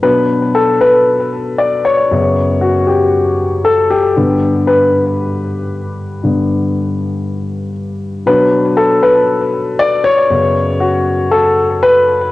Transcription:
X:1
M:4/4
L:1/16
Q:1/4=59
K:Bm
V:1 name="Grand piano"
B2 A B3 d c3 F G3 A G- | G2 B12 z2 | B2 A B3 d c3 F2 A2 B2 |]
V:2 name="Grand piano" clef=bass
[B,,F,D]2 z6 [F,,C,B,]6 z2 | [G,,D,B,]2 z6 [G,,D,B,]2 z6 | [B,,F,D]8 [F,,C,B,]6 z2 |]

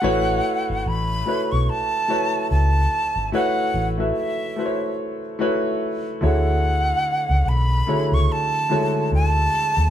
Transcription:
X:1
M:4/4
L:1/16
Q:"Swing 16ths" 1/4=73
K:A
V:1 name="Flute"
f4 b3 c' a4 a4 | f3 z e4 z6 f2- | f4 b3 c' a4 a4 |]
V:2 name="Grand piano"
[A,EFBc]4 z2 [A,EFBc]3 z [A,EFBc]4 z2 | [A,EFBc]2 z [A,EFBe]2 z [A,EFB=c^c]3 z [A,EFBc]3 z [D,A,EFGc]2- | [D,A,EFGc]4 z2 [D,A,EFGc]3 z [D,G,A,EFc]4 z2 |]
V:3 name="Fingered electric bass" clef=bass
A,,,2 z G,,, A,,,2 z B,,, z4 C,,2 z G,,, | z2 A,,,2 z8 z2 D,,2- | D,,2 z C,, B,,,2 z C,, z4 D,,2 z ^D,, |]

